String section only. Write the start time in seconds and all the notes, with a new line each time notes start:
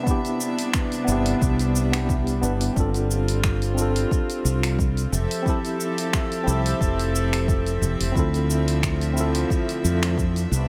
Already playing: C3 G3 B3 D4 E5
2.77 C4 F4
5.13 F3 C4 G4 A4 E5
8.16 D3 F3 A3
10.51 C3 G3 B3 D4